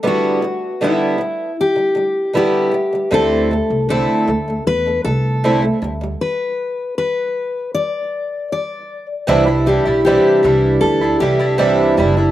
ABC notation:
X:1
M:4/4
L:1/16
Q:1/4=78
K:Clyd
V:1 name="Steel-string acoustic guitar"
F4 E4 G4 G4 | A4 A4 B2 A4 z2 | B4 B4 d4 d3 z | z2 G2 G4 A2 G6 |]
V:2 name="Twelve-string acoustic guitar" clef=bass
[D,G,B,E]2 [D,G,]2 [D,G,B,E]2 [D,G,]2 z [D,G,] [D,G,]2 [D,G,B,E]2 [D,G,] [D,G,] | [D,A,CE]2 [D,A,]2 [D,A,CE]2 [D,A,] [D,A,]2 [D,A,] [D,A,]2 [D,A,CE] [D,A,] [D,G,] [D,G,] | z16 | [C,E,G,DE] [G,DE] [E,G,DE] [G,DE] [C,E,G,DE]2 [E,G,DE]3 [G,DE] [E,G,DE] [G,DE] [C,E,G,DE]2 [E,G,DE] [G,DE] |]
V:3 name="Upright bass" clef=bass
z16 | D,,3 C,,2 z D,,2 E,,2 C,,4 D,,2 | z16 | C,,3 B,,,2 z C,,2 D,,2 C,,4 F,,,2 |]